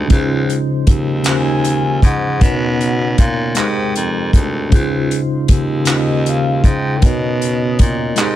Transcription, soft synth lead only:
1.30 G#5
2.06 F#5
3.20 F5
3.59 G5
5.91 D#5
6.30 F5
6.67 G5
7.06 D#5

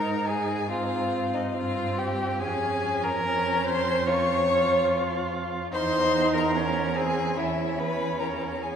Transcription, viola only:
Already playing: D#4
0.69 C4
1.56 C4
2.41 C#4
3.26 C#4
4.08 F4
4.49 F4
5.74 D#4
6.56 C#4
6.97 C4
7.38 C#4

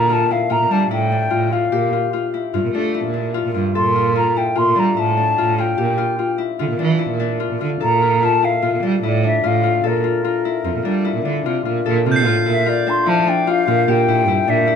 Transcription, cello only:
Already playing: A#2
0.50 A#2
0.61 A#2
0.70 G3
0.92 A2
1.32 A2
1.73 A#2
2.54 G2
2.64 A#2
2.75 A3
3.05 A#2
3.45 A#2
3.55 G2
3.75 A#2
4.57 A#2
4.68 A#2
4.78 G3
4.98 A2
5.38 A2
5.79 A#2
6.60 D3
6.70 A#2
6.80 E3
7.10 A#2
7.51 A#2
7.62 D3
7.81 A#2
8.63 A#2
8.72 A#2
8.83 G3
9.03 A2
9.43 A2
9.84 A#2
10.65 F2
10.75 A#2
10.86 G3
11.15 A#2
11.25 D3
11.46 C3
11.67 A#2
11.86 A#2
12.06 C3
12.26 A2
12.46 A#2
13.07 F3
13.68 A#2
13.88 A#2
14.08 A#2
14.28 G2
14.48 A#2

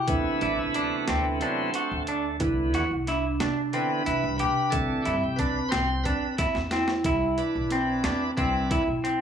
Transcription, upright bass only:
0.08 D2
0.42 A1
0.59 D2
1.08 D2
1.91 D2
2.41 C2
2.75 E2
2.91 C2
3.40 C3
4.07 C3
4.24 C2
4.41 C3
4.73 C2
5.07 G2
5.23 C2
5.73 C2
6.56 E2
7.05 C2
7.55 B1
8.05 E2
8.38 C2
8.87 B1

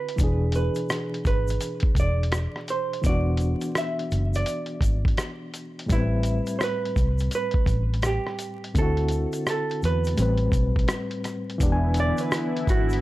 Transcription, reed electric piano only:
Already playing: D3 C4 E4 F#4
0.16 B2 E3
0.21 D4 G#4
3.02 E3 B3
3.07 D4 F#4
5.86 A2 G3
5.91 B3 B4
5.97 C4
8.74 D3 C4
8.79 E4 F#4
10.15 A2 G3
10.20 C4 B4
11.58 E3 B3
11.63 D4 G4
11.72 G#5

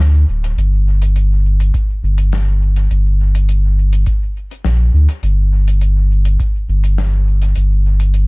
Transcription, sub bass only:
0.00 D2
0.28 D1
0.57 G1
2.03 G1
2.91 G1
4.65 A#1
4.94 D2
5.23 G1
6.68 G1
7.56 G1

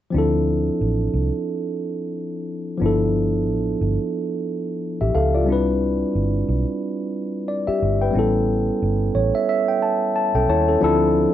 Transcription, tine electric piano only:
0.10 F3 C4
0.14 D4 E4 A4
2.78 F3 B3 D4
2.84 E4 A4
5.01 G4 E5
5.15 A4 F5
5.35 F4 D5
5.44 G3 C4
5.48 D4 E4
5.52 B4
7.48 D5
7.67 G4 E5
8.01 B4 G5
8.11 G3 B3 C#4
8.17 E4 A4
9.15 C#5
9.35 E5
9.49 E5
9.68 G5
9.82 A5
10.16 A5
10.35 C#4 A4 G5
10.50 E4 C#5 A5
10.68 C#4 A4
10.81 F3 C4 D4 E4 A4

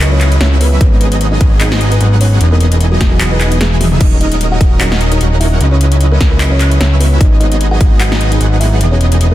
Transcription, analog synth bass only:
Already playing: C#2
0.41 C#2
0.81 G#1
1.41 G#1
2.01 G#1
2.41 E1
3.01 E1
3.61 E1
4.01 D#1
4.61 D#1
5.21 D#1
5.61 C#2
6.21 C#2
6.81 C#2
7.21 G#1
7.81 G#1
8.41 G#1
8.81 E1

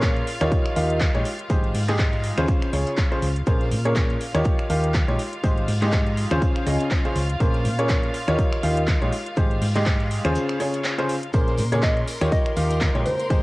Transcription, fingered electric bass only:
Already playing: A#2
0.41 D#2
0.76 D#2
1.15 A#1
1.50 G#1
1.75 G#2
2.38 D#2
2.73 C#2
3.22 C#2
3.47 A#1
3.71 A#2
4.34 D#2
4.70 D#2
5.08 A#1
5.44 G#1
5.68 G#2
6.31 D#2
6.67 C#2
7.16 C#2
7.40 A#1
7.65 A#2
8.28 D#2
8.63 D#2
9.02 A#1
9.37 G#1
9.62 G#2
10.25 D#2
11.34 A#1
11.58 A#2
12.21 D#2
12.57 D#2
12.95 A#1
13.30 G#1

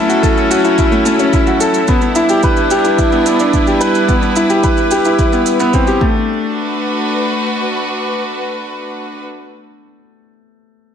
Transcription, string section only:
Already playing: F#3 B3 C#4 E4 A4
1.88 G3
2.06 D4
2.50 B4
6.01 A3
6.09 D4
6.45 F#4
6.54 B4

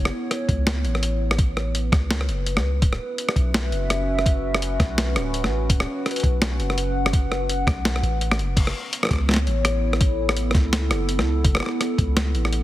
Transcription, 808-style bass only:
Already playing: F#1
0.49 C#2
0.84 A1
1.92 C#2
2.28 F#1
2.56 C#2
2.82 D1
3.36 B1
3.71 F#1
4.80 B1
5.16 D1
5.44 A1
5.69 D1
6.23 B1
6.59 F#1
7.67 B1
8.03 A1
8.39 F#1
8.57 F#1
9.11 C#2
9.47 A1
10.55 C#2
10.91 F#1
11.19 C#2
11.44 F#1
11.98 C#2
12.34 A1

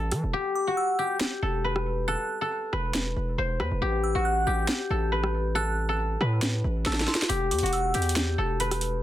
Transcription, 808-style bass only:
Already playing: A1
0.12 E3
0.23 E1
1.43 E1
2.73 E1
3.16 E1
3.38 E1
3.60 E2
3.71 E1
3.82 A1
4.15 A1
4.47 A1
4.90 A1
6.21 A2
6.64 A1
6.86 A1
7.29 E1
7.51 E2
7.63 E1
7.95 E2
8.38 E1

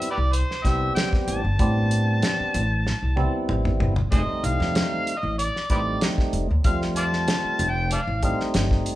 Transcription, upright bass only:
0.18 C2
0.65 C2
1.28 A1
1.45 G1
1.60 A2
2.40 muted upright bass stroke
2.55 A1
3.03 C2
3.50 A1
3.80 G1
4.12 F1
4.29 muted upright bass stroke
4.43 C2
4.60 F2
5.23 A1
5.70 A1
6.33 F1
6.51 D#2
6.65 F2
7.44 muted upright bass stroke
7.59 F1
8.07 A1
8.55 G1

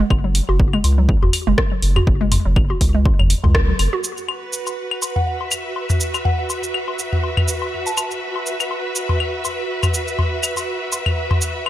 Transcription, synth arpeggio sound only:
0.24 F#3
0.49 F#4
0.73 G#3
0.98 F#3
1.23 F#4
1.47 G#3
1.72 F#3
1.96 F#4
2.21 G#3
2.45 F#3
2.70 F#4
2.95 G#3
3.19 F#3
3.44 C#3
3.68 F#3
3.93 F#4

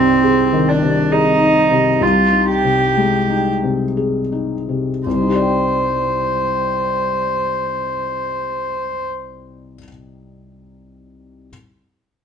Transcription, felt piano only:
Already playing: C2 C3 D#4
0.23 G#4
0.53 D#3
0.82 C3
1.11 G#4
1.40 D#4
1.71 C3
2.01 C2
2.32 D#4
2.64 C3
2.97 G#3
3.29 D#4
3.63 C3
3.97 G#4
4.32 D#4
4.69 C3
5.06 C2
5.13 C3
5.21 D#4
5.28 G4
5.34 D5
5.41 G5

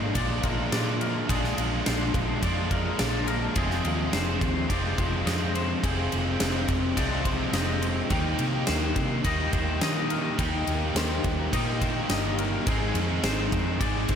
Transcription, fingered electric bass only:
Already playing: G#2
0.15 A#1
0.44 A#1
0.72 A#2
1.29 A#1
1.58 A#1
1.87 A#1
2.15 A#1
2.43 F2
3.00 A#1
3.56 F1
3.84 D#2
4.13 F1
4.42 D#2
4.70 F1
4.98 F1
5.26 F2
5.84 F1
6.13 F1
6.41 F1
6.69 F1
6.97 C2
7.53 F1
8.10 D#2
8.39 C3
8.68 D#2
8.96 C3
9.25 D#2
9.53 D#2
9.81 D#3
10.39 D#2
10.67 D#2
10.95 D#2
11.25 D#2
11.53 A#2
12.09 G1
12.67 G#1
12.94 F2
13.23 G#1
13.52 F2
13.81 G#1
14.09 G#1

